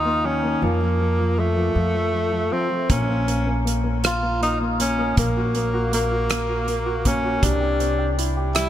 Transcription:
Already playing: D#2 D#3 A#3 D#4
0.05 A#3
0.24 D#3 C#4
0.43 A#3
0.62 F2 F3 A#3
0.81 F3
1.00 F3
1.18 F3
1.38 F3 A3
1.56 F3
1.75 F2 F3
1.94 F3
2.13 F3
2.32 F3
2.51 F3 C4
2.70 F3
2.90 A#1 A#3 C#4, kick, closed hi-hat
3.08 A#3
3.27 A#3, closed hi-hat
3.47 A#3
3.65 A#3, closed hi-hat
3.84 A#3
4.04 F4, cross-stick, closed hi-hat
4.22 A#3
4.41 A#3 D#4, closed hi-hat
4.61 A#3
4.79 A#3 C#4, closed hi-hat
4.99 A#3
5.17 A#1 A#3, kick, closed hi-hat
5.37 F#4
5.55 A#3, closed hi-hat
5.74 F#4
5.92 A#3, closed hi-hat
6.12 F#4
6.30 A#3, cross-stick, closed hi-hat
6.49 F#4
6.67 A#3, closed hi-hat
6.86 F#4
7.05 A#3 C#4, kick, closed hi-hat
7.24 F#4
7.42 C2 C3 D4, kick, closed hi-hat
7.60 G4
7.80 C4, closed hi-hat
7.99 G4
8.18 E4, closed hi-hat
8.37 G4
8.55 G3 E4, cross-stick, closed hi-hat

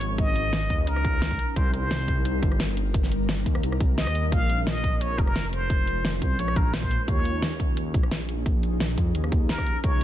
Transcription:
Already playing: G#1 F3 C#4 D#4 A#4 C#5
0.01 closed hi-hat
0.18 D#5, kick, closed hi-hat
0.36 closed hi-hat
0.53 snare, closed hi-hat
0.70 D#2, kick, closed hi-hat
0.87 C#2 A#4, closed hi-hat
0.96 cross-stick
1.05 kick, closed hi-hat
1.22 snare, closed hi-hat
1.31 kick
1.39 G3 C4, closed hi-hat
1.56 C2 C5, kick, closed hi-hat
1.74 C5, closed hi-hat
1.91 snare, closed hi-hat
2.08 kick, closed hi-hat
2.25 closed hi-hat
2.42 G1, kick, closed hi-hat
2.52 cross-stick
2.60 snare, closed hi-hat
2.77 closed hi-hat
2.94 kick, closed hi-hat
3.03 snare
3.12 closed hi-hat
3.29 snare, closed hi-hat
3.46 D#2, kick, closed hi-hat
3.55 cross-stick
3.63 C2, closed hi-hat
3.72 cross-stick
3.80 kick, closed hi-hat
3.98 D#5, snare, closed hi-hat
4.07 D#2, cross-stick
4.15 closed hi-hat
4.32 A#1 G#3 C#4 F4 F5, kick, closed hi-hat
4.50 closed hi-hat
4.67 D#5, snare, closed hi-hat
4.84 kick, closed hi-hat
5.01 C#5, closed hi-hat
5.18 F1 A#4, kick, closed hi-hat
5.27 cross-stick
5.36 snare, closed hi-hat
5.53 C5, closed hi-hat
5.70 kick, closed hi-hat
5.87 closed hi-hat
6.05 snare, closed hi-hat
6.22 C2 C5, kick, closed hi-hat
6.39 A#1 C#5, closed hi-hat
6.48 cross-stick
6.56 A#4, kick, closed hi-hat
6.74 C5, snare, closed hi-hat
6.82 kick
6.91 closed hi-hat
7.08 D#2 F3 D#4 G#4 C#5, kick, closed hi-hat
7.25 closed hi-hat
7.42 snare, closed hi-hat
7.60 kick, closed hi-hat
7.77 closed hi-hat
7.94 A#1, kick, closed hi-hat
8.03 cross-stick
8.11 snare, closed hi-hat
8.29 closed hi-hat
8.46 kick, closed hi-hat
8.63 closed hi-hat
8.80 snare, closed hi-hat
8.98 F2, kick, closed hi-hat
9.15 D#2, closed hi-hat
9.24 cross-stick
9.32 kick, closed hi-hat
9.49 A#4, snare, closed hi-hat
9.58 kick, cross-stick
9.67 closed hi-hat
9.84 C#2 F3 A#4 C#5, kick, closed hi-hat

